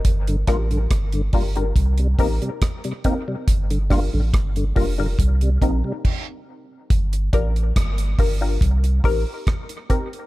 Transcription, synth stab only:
X:1
M:4/4
L:1/16
Q:1/4=70
K:Gm
V:1 name="Synth stab"
z2 [DFGB] z3 [DFGB] [DFGB] z2 [CEGB] z3 [CEGB] z | z2 [DFGB] z3 [DFGB] [DFGB] z2 [CEGB] z4 z | z2 [DFGB] z3 [DFGB] [DFGB] z2 [CEGB] z3 [CEGB] z |]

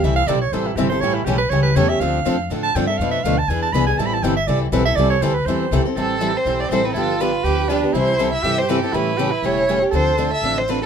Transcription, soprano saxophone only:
X:1
M:4/4
L:1/8
Q:"Swing" 1/4=243
K:Am
V:1 name="Soprano saxophone"
e f d ^c =c E G c | ^c E G B c B c e | f4 z a g e | f e f a ^g a b g |
(3a b a g e d G B e | d ^c =c B c3 z | C8 | F4 G2 D2 |
E4 G4 | E2 G E4 z | A6 z2 |]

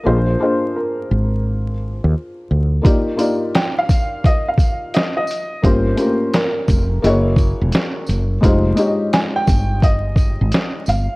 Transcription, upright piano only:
X:1
M:4/4
L:1/16
Q:"Swing 16ths" 1/4=86
K:Fm
V:1 name="Upright piano"
c4 B4 z8 | z4 g f3 e f3 e e3 | c4 B4 z8 | z4 a g3 e6 f2 |]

